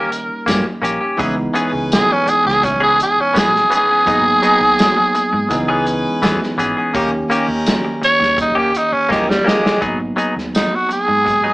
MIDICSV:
0, 0, Header, 1, 9, 480
1, 0, Start_track
1, 0, Key_signature, 5, "minor"
1, 0, Tempo, 719424
1, 794, Time_signature, 4, 2, 24, 8
1, 7696, End_track
2, 0, Start_track
2, 0, Title_t, "Horn section"
2, 0, Program_c, 0, 61
2, 785, Note_on_c, 0, 61, 84
2, 786, Note_on_c, 0, 64, 88
2, 791, Note_on_c, 0, 68, 81
2, 795, Note_on_c, 0, 71, 101
2, 892, Note_off_c, 0, 61, 0
2, 892, Note_off_c, 0, 64, 0
2, 898, Note_off_c, 0, 68, 0
2, 902, Note_off_c, 0, 71, 0
2, 1023, Note_on_c, 0, 61, 99
2, 1025, Note_on_c, 0, 68, 88
2, 1029, Note_on_c, 0, 71, 106
2, 1508, Note_off_c, 0, 61, 0
2, 1509, Note_off_c, 0, 68, 0
2, 1511, Note_off_c, 0, 71, 0
2, 2703, Note_on_c, 0, 63, 78
2, 2707, Note_on_c, 0, 68, 70
2, 2709, Note_on_c, 0, 66, 70
2, 2712, Note_on_c, 0, 71, 81
2, 2810, Note_off_c, 0, 63, 0
2, 2813, Note_off_c, 0, 68, 0
2, 2816, Note_off_c, 0, 66, 0
2, 2819, Note_off_c, 0, 71, 0
2, 2948, Note_on_c, 0, 63, 84
2, 2951, Note_on_c, 0, 68, 78
2, 2953, Note_on_c, 0, 66, 77
2, 2960, Note_on_c, 0, 73, 88
2, 3429, Note_off_c, 0, 63, 0
2, 3431, Note_off_c, 0, 68, 0
2, 3432, Note_off_c, 0, 66, 0
2, 3435, Note_off_c, 0, 73, 0
2, 3668, Note_on_c, 0, 61, 106
2, 3680, Note_on_c, 0, 68, 102
2, 3680, Note_on_c, 0, 71, 117
2, 4439, Note_off_c, 0, 61, 0
2, 4445, Note_off_c, 0, 68, 0
2, 4445, Note_off_c, 0, 71, 0
2, 4629, Note_on_c, 0, 61, 99
2, 4631, Note_on_c, 0, 63, 85
2, 4635, Note_on_c, 0, 67, 85
2, 4636, Note_on_c, 0, 70, 110
2, 4736, Note_off_c, 0, 61, 0
2, 4737, Note_off_c, 0, 63, 0
2, 4741, Note_off_c, 0, 67, 0
2, 4743, Note_off_c, 0, 70, 0
2, 4858, Note_on_c, 0, 63, 93
2, 4862, Note_on_c, 0, 61, 101
2, 4866, Note_on_c, 0, 67, 91
2, 4873, Note_on_c, 0, 70, 107
2, 5345, Note_off_c, 0, 63, 0
2, 5347, Note_off_c, 0, 61, 0
2, 5349, Note_off_c, 0, 67, 0
2, 5352, Note_off_c, 0, 70, 0
2, 7696, End_track
3, 0, Start_track
3, 0, Title_t, "Tenor saxophone"
3, 0, Program_c, 1, 66
3, 0, Note_on_c, 1, 70, 109
3, 293, Note_off_c, 1, 70, 0
3, 1288, Note_on_c, 1, 68, 107
3, 1417, Note_on_c, 1, 61, 95
3, 1427, Note_off_c, 1, 68, 0
3, 1529, Note_on_c, 1, 68, 94
3, 1539, Note_off_c, 1, 61, 0
3, 1637, Note_off_c, 1, 68, 0
3, 1645, Note_on_c, 1, 68, 101
3, 1763, Note_on_c, 1, 61, 90
3, 1773, Note_off_c, 1, 68, 0
3, 1873, Note_off_c, 1, 61, 0
3, 1888, Note_on_c, 1, 68, 96
3, 1991, Note_off_c, 1, 68, 0
3, 2020, Note_on_c, 1, 68, 93
3, 2137, Note_on_c, 1, 61, 90
3, 2147, Note_off_c, 1, 68, 0
3, 2261, Note_on_c, 1, 68, 95
3, 2271, Note_off_c, 1, 61, 0
3, 2480, Note_off_c, 1, 68, 0
3, 2499, Note_on_c, 1, 68, 108
3, 3898, Note_off_c, 1, 68, 0
3, 5367, Note_on_c, 1, 73, 119
3, 5592, Note_off_c, 1, 73, 0
3, 5612, Note_on_c, 1, 63, 88
3, 5718, Note_off_c, 1, 63, 0
3, 5726, Note_on_c, 1, 67, 89
3, 5850, Note_on_c, 1, 63, 86
3, 5860, Note_off_c, 1, 67, 0
3, 5958, Note_on_c, 1, 61, 89
3, 5968, Note_off_c, 1, 63, 0
3, 6079, Note_on_c, 1, 51, 93
3, 6089, Note_off_c, 1, 61, 0
3, 6206, Note_on_c, 1, 55, 91
3, 6216, Note_off_c, 1, 51, 0
3, 6327, Note_on_c, 1, 56, 102
3, 6337, Note_off_c, 1, 55, 0
3, 6553, Note_off_c, 1, 56, 0
3, 7040, Note_on_c, 1, 63, 81
3, 7171, Note_on_c, 1, 66, 80
3, 7181, Note_off_c, 1, 63, 0
3, 7273, Note_off_c, 1, 66, 0
3, 7290, Note_on_c, 1, 68, 100
3, 7696, Note_off_c, 1, 68, 0
3, 7696, End_track
4, 0, Start_track
4, 0, Title_t, "Clean electric guitar"
4, 0, Program_c, 2, 27
4, 0, Note_on_c, 2, 61, 74
4, 0, Note_on_c, 2, 67, 80
4, 71, Note_off_c, 2, 61, 0
4, 71, Note_off_c, 2, 67, 0
4, 309, Note_on_c, 2, 58, 78
4, 320, Note_on_c, 2, 61, 86
4, 326, Note_on_c, 2, 67, 73
4, 429, Note_off_c, 2, 67, 0
4, 435, Note_off_c, 2, 58, 0
4, 439, Note_off_c, 2, 61, 0
4, 545, Note_on_c, 2, 58, 65
4, 553, Note_on_c, 2, 61, 78
4, 561, Note_on_c, 2, 67, 83
4, 663, Note_off_c, 2, 67, 0
4, 671, Note_on_c, 2, 67, 67
4, 673, Note_off_c, 2, 58, 0
4, 677, Note_off_c, 2, 61, 0
4, 689, Note_on_c, 2, 61, 57
4, 785, Note_on_c, 2, 52, 81
4, 786, Note_off_c, 2, 61, 0
4, 790, Note_off_c, 2, 67, 0
4, 790, Note_on_c, 2, 59, 92
4, 795, Note_on_c, 2, 61, 97
4, 797, Note_on_c, 2, 68, 98
4, 903, Note_off_c, 2, 68, 0
4, 910, Note_off_c, 2, 61, 0
4, 913, Note_off_c, 2, 59, 0
4, 914, Note_off_c, 2, 52, 0
4, 1025, Note_on_c, 2, 52, 91
4, 1030, Note_on_c, 2, 59, 86
4, 1034, Note_on_c, 2, 61, 90
4, 1038, Note_on_c, 2, 68, 101
4, 1146, Note_off_c, 2, 68, 0
4, 1151, Note_off_c, 2, 61, 0
4, 1153, Note_off_c, 2, 52, 0
4, 1156, Note_off_c, 2, 59, 0
4, 1871, Note_on_c, 2, 68, 75
4, 1873, Note_on_c, 2, 61, 74
4, 1878, Note_on_c, 2, 59, 64
4, 1880, Note_on_c, 2, 52, 59
4, 1979, Note_off_c, 2, 52, 0
4, 1985, Note_off_c, 2, 59, 0
4, 1986, Note_off_c, 2, 61, 0
4, 1990, Note_off_c, 2, 68, 0
4, 2226, Note_on_c, 2, 52, 64
4, 2233, Note_on_c, 2, 59, 70
4, 2236, Note_on_c, 2, 61, 73
4, 2242, Note_on_c, 2, 68, 68
4, 2342, Note_off_c, 2, 68, 0
4, 2347, Note_off_c, 2, 61, 0
4, 2349, Note_off_c, 2, 59, 0
4, 2353, Note_off_c, 2, 52, 0
4, 2469, Note_on_c, 2, 52, 70
4, 2473, Note_on_c, 2, 59, 66
4, 2480, Note_on_c, 2, 61, 70
4, 2486, Note_on_c, 2, 68, 77
4, 2585, Note_off_c, 2, 68, 0
4, 2593, Note_on_c, 2, 68, 58
4, 2595, Note_off_c, 2, 52, 0
4, 2595, Note_off_c, 2, 61, 0
4, 2597, Note_off_c, 2, 59, 0
4, 2603, Note_on_c, 2, 61, 52
4, 2611, Note_on_c, 2, 59, 49
4, 2706, Note_off_c, 2, 59, 0
4, 2710, Note_on_c, 2, 54, 78
4, 2711, Note_off_c, 2, 68, 0
4, 2714, Note_on_c, 2, 59, 74
4, 2715, Note_off_c, 2, 61, 0
4, 2718, Note_on_c, 2, 63, 84
4, 2721, Note_on_c, 2, 68, 81
4, 2829, Note_off_c, 2, 68, 0
4, 2832, Note_off_c, 2, 63, 0
4, 2835, Note_off_c, 2, 54, 0
4, 2837, Note_off_c, 2, 59, 0
4, 2950, Note_on_c, 2, 54, 87
4, 2956, Note_on_c, 2, 59, 86
4, 2961, Note_on_c, 2, 63, 90
4, 2962, Note_on_c, 2, 68, 94
4, 3069, Note_off_c, 2, 68, 0
4, 3072, Note_off_c, 2, 63, 0
4, 3075, Note_off_c, 2, 54, 0
4, 3078, Note_off_c, 2, 59, 0
4, 3793, Note_on_c, 2, 68, 83
4, 3798, Note_on_c, 2, 61, 82
4, 3803, Note_on_c, 2, 59, 74
4, 3805, Note_on_c, 2, 52, 67
4, 3906, Note_off_c, 2, 52, 0
4, 3910, Note_off_c, 2, 68, 0
4, 3912, Note_off_c, 2, 59, 0
4, 3913, Note_off_c, 2, 61, 0
4, 4151, Note_on_c, 2, 52, 75
4, 4156, Note_on_c, 2, 59, 78
4, 4163, Note_on_c, 2, 61, 78
4, 4169, Note_on_c, 2, 68, 86
4, 4268, Note_off_c, 2, 68, 0
4, 4270, Note_off_c, 2, 61, 0
4, 4273, Note_off_c, 2, 59, 0
4, 4275, Note_off_c, 2, 52, 0
4, 4389, Note_on_c, 2, 52, 79
4, 4394, Note_on_c, 2, 59, 82
4, 4399, Note_on_c, 2, 61, 82
4, 4403, Note_on_c, 2, 68, 85
4, 4508, Note_off_c, 2, 68, 0
4, 4514, Note_off_c, 2, 52, 0
4, 4515, Note_off_c, 2, 61, 0
4, 4516, Note_off_c, 2, 59, 0
4, 4516, Note_on_c, 2, 68, 71
4, 4523, Note_on_c, 2, 61, 66
4, 4531, Note_on_c, 2, 59, 56
4, 4626, Note_off_c, 2, 59, 0
4, 4627, Note_off_c, 2, 61, 0
4, 4629, Note_on_c, 2, 58, 93
4, 4631, Note_off_c, 2, 68, 0
4, 4635, Note_on_c, 2, 61, 96
4, 4641, Note_on_c, 2, 67, 93
4, 4745, Note_off_c, 2, 67, 0
4, 4753, Note_off_c, 2, 61, 0
4, 4754, Note_off_c, 2, 58, 0
4, 4869, Note_on_c, 2, 58, 100
4, 4876, Note_on_c, 2, 61, 100
4, 4881, Note_on_c, 2, 67, 108
4, 4982, Note_off_c, 2, 67, 0
4, 4990, Note_off_c, 2, 61, 0
4, 4994, Note_off_c, 2, 58, 0
4, 5706, Note_on_c, 2, 67, 77
4, 5712, Note_on_c, 2, 61, 71
4, 5718, Note_on_c, 2, 58, 60
4, 5817, Note_off_c, 2, 58, 0
4, 5822, Note_off_c, 2, 61, 0
4, 5827, Note_off_c, 2, 67, 0
4, 6064, Note_on_c, 2, 58, 68
4, 6073, Note_on_c, 2, 61, 74
4, 6080, Note_on_c, 2, 67, 78
4, 6179, Note_off_c, 2, 67, 0
4, 6186, Note_off_c, 2, 61, 0
4, 6192, Note_off_c, 2, 58, 0
4, 6300, Note_on_c, 2, 58, 65
4, 6309, Note_on_c, 2, 61, 75
4, 6319, Note_on_c, 2, 67, 70
4, 6418, Note_off_c, 2, 67, 0
4, 6426, Note_on_c, 2, 67, 66
4, 6430, Note_off_c, 2, 58, 0
4, 6435, Note_off_c, 2, 61, 0
4, 6442, Note_on_c, 2, 61, 49
4, 6542, Note_on_c, 2, 54, 70
4, 6546, Note_off_c, 2, 61, 0
4, 6546, Note_on_c, 2, 59, 72
4, 6547, Note_off_c, 2, 67, 0
4, 6549, Note_on_c, 2, 63, 65
4, 6552, Note_on_c, 2, 68, 78
4, 6661, Note_off_c, 2, 68, 0
4, 6666, Note_off_c, 2, 63, 0
4, 6668, Note_off_c, 2, 59, 0
4, 6671, Note_off_c, 2, 54, 0
4, 6780, Note_on_c, 2, 54, 81
4, 6784, Note_on_c, 2, 59, 81
4, 6790, Note_on_c, 2, 63, 87
4, 6793, Note_on_c, 2, 68, 86
4, 6900, Note_off_c, 2, 68, 0
4, 6906, Note_off_c, 2, 63, 0
4, 6907, Note_off_c, 2, 59, 0
4, 6911, Note_off_c, 2, 54, 0
4, 7630, Note_on_c, 2, 68, 60
4, 7633, Note_on_c, 2, 63, 63
4, 7638, Note_on_c, 2, 59, 52
4, 7641, Note_on_c, 2, 54, 54
4, 7696, Note_off_c, 2, 54, 0
4, 7696, Note_off_c, 2, 59, 0
4, 7696, Note_off_c, 2, 63, 0
4, 7696, Note_off_c, 2, 68, 0
4, 7696, End_track
5, 0, Start_track
5, 0, Title_t, "Tine electric piano"
5, 0, Program_c, 3, 4
5, 0, Note_on_c, 3, 55, 67
5, 0, Note_on_c, 3, 58, 61
5, 0, Note_on_c, 3, 61, 60
5, 0, Note_on_c, 3, 63, 76
5, 758, Note_off_c, 3, 55, 0
5, 763, Note_off_c, 3, 58, 0
5, 764, Note_off_c, 3, 61, 0
5, 765, Note_off_c, 3, 63, 0
5, 779, Note_on_c, 3, 52, 77
5, 782, Note_on_c, 3, 56, 76
5, 790, Note_on_c, 3, 59, 72
5, 792, Note_on_c, 3, 63, 96
5, 2678, Note_off_c, 3, 52, 0
5, 2679, Note_off_c, 3, 56, 0
5, 2683, Note_off_c, 3, 59, 0
5, 2684, Note_off_c, 3, 63, 0
5, 2704, Note_on_c, 3, 54, 69
5, 2710, Note_on_c, 3, 58, 63
5, 2714, Note_on_c, 3, 59, 68
5, 2719, Note_on_c, 3, 63, 79
5, 3648, Note_off_c, 3, 54, 0
5, 3651, Note_off_c, 3, 58, 0
5, 3653, Note_off_c, 3, 59, 0
5, 3656, Note_off_c, 3, 63, 0
5, 3661, Note_on_c, 3, 52, 84
5, 3664, Note_on_c, 3, 56, 74
5, 3670, Note_on_c, 3, 59, 69
5, 3675, Note_on_c, 3, 63, 90
5, 4606, Note_off_c, 3, 52, 0
5, 4608, Note_off_c, 3, 56, 0
5, 4611, Note_off_c, 3, 59, 0
5, 4614, Note_off_c, 3, 63, 0
5, 4622, Note_on_c, 3, 51, 83
5, 4629, Note_on_c, 3, 67, 75
5, 4632, Note_on_c, 3, 58, 80
5, 4638, Note_on_c, 3, 61, 94
5, 6521, Note_off_c, 3, 51, 0
5, 6525, Note_off_c, 3, 67, 0
5, 6526, Note_off_c, 3, 58, 0
5, 6529, Note_off_c, 3, 61, 0
5, 6544, Note_on_c, 3, 54, 58
5, 6549, Note_on_c, 3, 58, 56
5, 6551, Note_on_c, 3, 59, 58
5, 6555, Note_on_c, 3, 63, 66
5, 7696, Note_off_c, 3, 54, 0
5, 7696, Note_off_c, 3, 58, 0
5, 7696, Note_off_c, 3, 59, 0
5, 7696, Note_off_c, 3, 63, 0
5, 7696, End_track
6, 0, Start_track
6, 0, Title_t, "Fingered electric bass"
6, 0, Program_c, 4, 33
6, 0, Note_on_c, 4, 51, 92
6, 175, Note_off_c, 4, 51, 0
6, 319, Note_on_c, 4, 43, 92
6, 412, Note_off_c, 4, 43, 0
6, 548, Note_on_c, 4, 34, 82
6, 645, Note_off_c, 4, 34, 0
6, 798, Note_on_c, 4, 37, 95
6, 980, Note_off_c, 4, 37, 0
6, 1155, Note_on_c, 4, 37, 84
6, 1339, Note_off_c, 4, 37, 0
6, 1643, Note_on_c, 4, 37, 88
6, 2007, Note_off_c, 4, 37, 0
6, 2240, Note_on_c, 4, 34, 88
6, 2420, Note_off_c, 4, 34, 0
6, 2719, Note_on_c, 4, 32, 98
6, 2900, Note_off_c, 4, 32, 0
6, 3076, Note_on_c, 4, 39, 85
6, 3259, Note_off_c, 4, 39, 0
6, 3556, Note_on_c, 4, 44, 94
6, 3645, Note_off_c, 4, 44, 0
6, 3675, Note_on_c, 4, 37, 108
6, 4040, Note_off_c, 4, 37, 0
6, 4154, Note_on_c, 4, 40, 100
6, 4248, Note_off_c, 4, 40, 0
6, 4387, Note_on_c, 4, 32, 85
6, 4483, Note_off_c, 4, 32, 0
6, 4632, Note_on_c, 4, 39, 103
6, 4815, Note_off_c, 4, 39, 0
6, 4993, Note_on_c, 4, 39, 87
6, 5177, Note_off_c, 4, 39, 0
6, 5474, Note_on_c, 4, 39, 95
6, 5842, Note_off_c, 4, 39, 0
6, 6074, Note_on_c, 4, 39, 96
6, 6257, Note_off_c, 4, 39, 0
6, 6552, Note_on_c, 4, 32, 79
6, 6736, Note_off_c, 4, 32, 0
6, 6914, Note_on_c, 4, 39, 74
6, 7099, Note_off_c, 4, 39, 0
6, 7396, Note_on_c, 4, 44, 78
6, 7696, Note_off_c, 4, 44, 0
6, 7696, End_track
7, 0, Start_track
7, 0, Title_t, "Muted clean electric guitar strokes"
7, 72, Note_on_c, 9, 29, 44
7, 139, Note_off_c, 9, 29, 0
7, 437, Note_on_c, 9, 29, 50
7, 503, Note_off_c, 9, 29, 0
7, 911, Note_on_c, 9, 29, 52
7, 978, Note_off_c, 9, 29, 0
7, 1154, Note_on_c, 9, 29, 46
7, 1221, Note_off_c, 9, 29, 0
7, 1390, Note_on_c, 9, 29, 49
7, 1456, Note_off_c, 9, 29, 0
7, 1508, Note_on_c, 9, 29, 37
7, 1575, Note_off_c, 9, 29, 0
7, 1628, Note_on_c, 9, 29, 48
7, 1695, Note_off_c, 9, 29, 0
7, 1747, Note_on_c, 9, 29, 41
7, 1814, Note_off_c, 9, 29, 0
7, 1987, Note_on_c, 9, 29, 46
7, 2054, Note_off_c, 9, 29, 0
7, 2350, Note_on_c, 9, 29, 43
7, 2417, Note_off_c, 9, 29, 0
7, 3077, Note_on_c, 9, 29, 47
7, 3144, Note_off_c, 9, 29, 0
7, 3314, Note_on_c, 9, 29, 54
7, 3381, Note_off_c, 9, 29, 0
7, 3433, Note_on_c, 9, 29, 45
7, 3500, Note_off_c, 9, 29, 0
7, 3555, Note_on_c, 9, 29, 49
7, 3622, Note_off_c, 9, 29, 0
7, 3673, Note_on_c, 9, 29, 45
7, 3739, Note_off_c, 9, 29, 0
7, 3914, Note_on_c, 9, 29, 44
7, 3981, Note_off_c, 9, 29, 0
7, 4276, Note_on_c, 9, 29, 54
7, 4343, Note_off_c, 9, 29, 0
7, 4753, Note_on_c, 9, 29, 53
7, 4820, Note_off_c, 9, 29, 0
7, 4990, Note_on_c, 9, 29, 48
7, 5057, Note_off_c, 9, 29, 0
7, 5235, Note_on_c, 9, 29, 48
7, 5301, Note_off_c, 9, 29, 0
7, 5348, Note_on_c, 9, 29, 42
7, 5415, Note_off_c, 9, 29, 0
7, 5469, Note_on_c, 9, 29, 47
7, 5536, Note_off_c, 9, 29, 0
7, 5582, Note_on_c, 9, 29, 44
7, 5649, Note_off_c, 9, 29, 0
7, 5825, Note_on_c, 9, 29, 44
7, 5892, Note_off_c, 9, 29, 0
7, 6187, Note_on_c, 9, 29, 47
7, 6254, Note_off_c, 9, 29, 0
7, 6669, Note_on_c, 9, 29, 43
7, 6736, Note_off_c, 9, 29, 0
7, 6908, Note_on_c, 9, 29, 38
7, 6974, Note_off_c, 9, 29, 0
7, 7147, Note_on_c, 9, 29, 40
7, 7214, Note_off_c, 9, 29, 0
7, 7264, Note_on_c, 9, 29, 38
7, 7330, Note_off_c, 9, 29, 0
7, 7392, Note_on_c, 9, 29, 41
7, 7459, Note_off_c, 9, 29, 0
7, 7505, Note_on_c, 9, 29, 36
7, 7572, Note_off_c, 9, 29, 0
7, 7696, End_track
8, 0, Start_track
8, 0, Title_t, "Muted fingered electric bass strokes"
8, 1513, Note_on_c, 9, 29, 36
8, 1579, Note_off_c, 9, 29, 0
8, 2121, Note_on_c, 9, 29, 38
8, 2188, Note_off_c, 9, 29, 0
8, 5352, Note_on_c, 9, 29, 38
8, 5419, Note_off_c, 9, 29, 0
8, 5954, Note_on_c, 9, 29, 41
8, 6020, Note_off_c, 9, 29, 0
8, 7696, End_track
9, 0, Start_track
9, 0, Title_t, "Drums"
9, 81, Note_on_c, 9, 42, 60
9, 148, Note_off_c, 9, 42, 0
9, 318, Note_on_c, 9, 36, 79
9, 319, Note_on_c, 9, 42, 90
9, 319, Note_on_c, 9, 54, 123
9, 327, Note_on_c, 9, 38, 114
9, 384, Note_off_c, 9, 36, 0
9, 386, Note_off_c, 9, 42, 0
9, 386, Note_off_c, 9, 54, 0
9, 394, Note_off_c, 9, 38, 0
9, 563, Note_on_c, 9, 42, 63
9, 630, Note_off_c, 9, 42, 0
9, 797, Note_on_c, 9, 36, 111
9, 797, Note_on_c, 9, 42, 88
9, 863, Note_off_c, 9, 36, 0
9, 864, Note_off_c, 9, 42, 0
9, 1036, Note_on_c, 9, 42, 69
9, 1102, Note_off_c, 9, 42, 0
9, 1281, Note_on_c, 9, 42, 90
9, 1281, Note_on_c, 9, 54, 112
9, 1289, Note_on_c, 9, 38, 119
9, 1348, Note_off_c, 9, 42, 0
9, 1348, Note_off_c, 9, 54, 0
9, 1356, Note_off_c, 9, 38, 0
9, 1518, Note_on_c, 9, 42, 65
9, 1585, Note_off_c, 9, 42, 0
9, 1657, Note_on_c, 9, 38, 36
9, 1724, Note_off_c, 9, 38, 0
9, 1758, Note_on_c, 9, 36, 96
9, 1762, Note_on_c, 9, 42, 91
9, 1824, Note_off_c, 9, 36, 0
9, 1828, Note_off_c, 9, 42, 0
9, 2001, Note_on_c, 9, 42, 67
9, 2068, Note_off_c, 9, 42, 0
9, 2238, Note_on_c, 9, 36, 82
9, 2242, Note_on_c, 9, 42, 92
9, 2242, Note_on_c, 9, 54, 118
9, 2251, Note_on_c, 9, 38, 118
9, 2304, Note_off_c, 9, 36, 0
9, 2309, Note_off_c, 9, 42, 0
9, 2309, Note_off_c, 9, 54, 0
9, 2318, Note_off_c, 9, 38, 0
9, 2374, Note_on_c, 9, 38, 36
9, 2440, Note_off_c, 9, 38, 0
9, 2479, Note_on_c, 9, 42, 65
9, 2546, Note_off_c, 9, 42, 0
9, 2716, Note_on_c, 9, 36, 121
9, 2719, Note_on_c, 9, 42, 94
9, 2783, Note_off_c, 9, 36, 0
9, 2786, Note_off_c, 9, 42, 0
9, 2956, Note_on_c, 9, 42, 60
9, 3023, Note_off_c, 9, 42, 0
9, 3196, Note_on_c, 9, 42, 90
9, 3196, Note_on_c, 9, 54, 123
9, 3204, Note_on_c, 9, 38, 121
9, 3262, Note_off_c, 9, 42, 0
9, 3262, Note_off_c, 9, 54, 0
9, 3271, Note_off_c, 9, 38, 0
9, 3435, Note_on_c, 9, 42, 63
9, 3502, Note_off_c, 9, 42, 0
9, 3673, Note_on_c, 9, 42, 88
9, 3675, Note_on_c, 9, 36, 92
9, 3740, Note_off_c, 9, 42, 0
9, 3741, Note_off_c, 9, 36, 0
9, 3913, Note_on_c, 9, 42, 61
9, 3980, Note_off_c, 9, 42, 0
9, 4154, Note_on_c, 9, 36, 89
9, 4155, Note_on_c, 9, 42, 90
9, 4155, Note_on_c, 9, 54, 116
9, 4164, Note_on_c, 9, 38, 115
9, 4221, Note_off_c, 9, 36, 0
9, 4222, Note_off_c, 9, 42, 0
9, 4222, Note_off_c, 9, 54, 0
9, 4230, Note_off_c, 9, 38, 0
9, 4290, Note_on_c, 9, 38, 35
9, 4357, Note_off_c, 9, 38, 0
9, 4399, Note_on_c, 9, 42, 61
9, 4466, Note_off_c, 9, 42, 0
9, 4635, Note_on_c, 9, 36, 120
9, 4635, Note_on_c, 9, 42, 95
9, 4701, Note_off_c, 9, 36, 0
9, 4702, Note_off_c, 9, 42, 0
9, 4879, Note_on_c, 9, 42, 68
9, 4945, Note_off_c, 9, 42, 0
9, 5114, Note_on_c, 9, 42, 92
9, 5114, Note_on_c, 9, 54, 119
9, 5122, Note_on_c, 9, 38, 117
9, 5180, Note_off_c, 9, 42, 0
9, 5180, Note_off_c, 9, 54, 0
9, 5189, Note_off_c, 9, 38, 0
9, 5358, Note_on_c, 9, 42, 75
9, 5425, Note_off_c, 9, 42, 0
9, 5488, Note_on_c, 9, 38, 36
9, 5555, Note_off_c, 9, 38, 0
9, 5591, Note_on_c, 9, 36, 102
9, 5594, Note_on_c, 9, 42, 101
9, 5658, Note_off_c, 9, 36, 0
9, 5661, Note_off_c, 9, 42, 0
9, 5836, Note_on_c, 9, 42, 65
9, 5902, Note_off_c, 9, 42, 0
9, 6071, Note_on_c, 9, 36, 84
9, 6081, Note_on_c, 9, 38, 70
9, 6138, Note_off_c, 9, 36, 0
9, 6147, Note_off_c, 9, 38, 0
9, 6208, Note_on_c, 9, 38, 77
9, 6275, Note_off_c, 9, 38, 0
9, 6323, Note_on_c, 9, 38, 94
9, 6389, Note_off_c, 9, 38, 0
9, 6446, Note_on_c, 9, 38, 97
9, 6513, Note_off_c, 9, 38, 0
9, 6552, Note_on_c, 9, 36, 104
9, 6553, Note_on_c, 9, 42, 77
9, 6619, Note_off_c, 9, 36, 0
9, 6620, Note_off_c, 9, 42, 0
9, 6793, Note_on_c, 9, 42, 51
9, 6860, Note_off_c, 9, 42, 0
9, 6927, Note_on_c, 9, 38, 31
9, 6994, Note_off_c, 9, 38, 0
9, 7037, Note_on_c, 9, 42, 73
9, 7037, Note_on_c, 9, 54, 105
9, 7046, Note_on_c, 9, 38, 99
9, 7104, Note_off_c, 9, 42, 0
9, 7104, Note_off_c, 9, 54, 0
9, 7113, Note_off_c, 9, 38, 0
9, 7277, Note_on_c, 9, 42, 57
9, 7344, Note_off_c, 9, 42, 0
9, 7516, Note_on_c, 9, 36, 83
9, 7522, Note_on_c, 9, 42, 76
9, 7583, Note_off_c, 9, 36, 0
9, 7589, Note_off_c, 9, 42, 0
9, 7696, End_track
0, 0, End_of_file